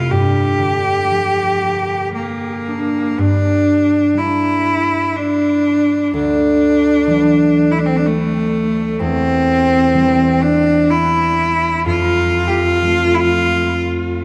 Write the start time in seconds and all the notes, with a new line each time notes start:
Already playing: F2 C3 A3 F4
0.10 G2 G4
0.59 D3
1.11 F3
1.62 A#3
2.15 A#3
2.68 D4
3.18 G2 D4
4.14 G3 A#3 E4
4.19 D4
5.16 D4
6.14 D2 D4
7.07 E3 F#3
7.12 D4
7.71 E4
7.79 D4
7.86 C4
7.96 D4
8.06 A3
9.00 E2 C4
9.94 E3 G3 C4
10.42 D4
10.90 E4
11.86 F2 F4
12.47 F4 G4
12.82 F3 A3
12.87 C4
13.15 E4
13.20 F4